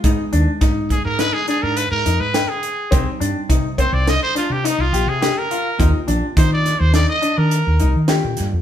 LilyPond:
<<
  \new Staff \with { instrumentName = "Trumpet" } { \time 5/4 \key ees \major \tempo 4 = 104 r4. aes'16 bes'16 ces''16 aes'16 aes'16 bes'16 ces''16 bes'8 ces''8 aes'8.~ | aes'16 r4 r16 c''16 d''16 ees''16 c''16 f'16 g'16 ees'16 f'8 aes'8 bes'8.~ | bes'16 r8. c''16 d''8 c''16 d''16 ees''8 bes'4 r4 r16 | }
  \new Staff \with { instrumentName = "Grand piano" } { \time 5/4 \key ees \major ees'8 d'8 ees'4 ees'8 d'4 ees'8 g''4 | c'8 d'8 ees'8 c'4 d'8 ees'8 g'8 g'8 f'8 | ees'8 d'8 ees'4 ees'8 d'4 ees'8 g'4 | }
  \new Staff \with { instrumentName = "Hollow-body jazz guitar" } { \time 5/4 \key ees \major <aes ces' ees' aes'>1~ <aes ces' ees' aes'>4 | <g c' ees' g'>1~ <g c' ees' g'>4 | <bes c' f' g'>1 <bes c' f' g'>4 | }
  \new Staff \with { instrumentName = "Fretless electric bass" } { \clef bass \time 5/4 \key ees \major aes,16 r16 ees,16 r16 aes,8. aes,8 r8 aes,8 aes,16 f,16 aes,8 r8. | c,16 r16 g,16 r16 c8. c,8 r8 c8 c,16 bes,,16 c8 r8. | ees,16 r16 bes,,16 r16 ees8. ees,8 r8 ees8 ees,16 c,16 ees8 bes,16 g,16 f,16 | }
  \new DrumStaff \with { instrumentName = "Drums" } \drummode { \time 5/4 <hh bd>8 hh8 <hh bd sn>8 <hh bd>8 <hh sn>8 hh8 hh8 hh8 <hh sn>8 hh8 | <hh bd>8 hh8 <hh bd>8 <hh bd>8 <hh sn>8 <hh sn>8 hh8 hh8 <hh sn>8 hh8 | <hh bd>8 hh8 <hh bd>8 <hh sn>8 <hh sn>8 hh8 hh8 hh8 <hh sn>8 <hh sn>8 | }
>>